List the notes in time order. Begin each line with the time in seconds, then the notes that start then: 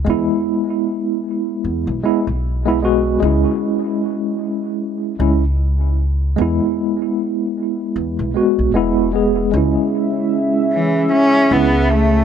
0.05 E2 G#3 B3
0.10 E4
1.64 E2
1.87 B1
2.03 G#3 B3 E4
2.27 B1
2.66 G#3 B3 E4
2.82 G#3 B3 F#4
3.20 C#2 G#3 C#4
3.25 E4
5.19 C#2 G#3 C#4 E4
6.36 E2 G#3 B3
6.41 E4
7.96 E2
8.19 B1
8.34 G#3 B3 F#4
8.59 B1
8.74 E1 G#3 B3 E4
9.13 G#3 B3 G#4
9.52 C#2 G#3 C#4 G#4 E5
9.57 E4
10.73 E3
11.12 C#4
11.50 C#2 G#3 B3 C#4 E4
11.91 A3